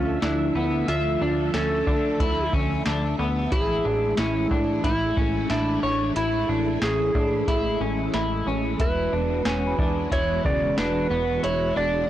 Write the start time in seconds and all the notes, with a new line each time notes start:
Already playing: D2 D3 F3 A3 C#4 F4 E5
0.22 D2 D4 E4, snare, closed hi-hat
0.55 D2 B3
0.88 D2 F4 E5, closed hi-hat
1.21 D2 D4
1.54 D2 C#4 A4, snare, closed hi-hat
1.87 D3 D4, kick
2.20 D2 E4, kick, closed hi-hat
2.53 D2 C#4, kick
2.86 D2 D4, snare, closed hi-hat
3.19 D2 B3
3.52 A1 E3 G#3 A3 E4 G#4, kick, closed hi-hat
3.85 A1 D4
4.17 A1 C#4 E4, snare, closed hi-hat
4.51 A2 D4, kick
4.84 A1 E4, kick, closed hi-hat
5.17 A1 C#4, kick
5.50 A1 D4 E4, snare, closed hi-hat
5.83 A1 C#5
6.16 A1 E4, closed hi-hat
6.49 A1 D4
6.82 A1 C#4 G#4, snare, closed hi-hat
7.15 A2 D4, kick
7.48 A1 E4, kick, closed hi-hat
7.81 A1 C#4
8.14 A1 E4, snare, closed hi-hat
8.46 A1 C#4
8.80 E1 E3 B3 E4 F#4 B4, kick, closed hi-hat
9.13 E1 D4
9.45 E1 C#4 G#5, snare, closed hi-hat
9.67 B5
9.79 E2 D4, kick
10.11 E1 E4 C#5, kick, closed hi-hat
10.45 E1 C#3 D5, kick
10.78 E1 D4 B4 B5, snare, closed hi-hat
11.11 E1 B3
11.43 E1 B3 E4 C#5, closed hi-hat
11.76 E1 D4 D5